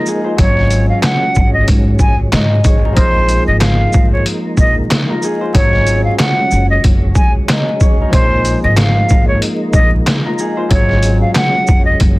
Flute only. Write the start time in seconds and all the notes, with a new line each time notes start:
0.38 C#5
0.89 F5
1.04 F#5
1.53 D#5
2.00 G#5
2.96 C5
3.47 D#5
3.61 F5
4.13 C#5
4.59 D#5
5.55 C#5
6.04 F5
6.19 F#5
6.70 D#5
7.16 G#5
8.12 C5
8.63 D#5
8.78 F5
9.28 C#5
9.73 D#5
10.70 C#5
11.21 F5
11.35 F#5
11.85 D#5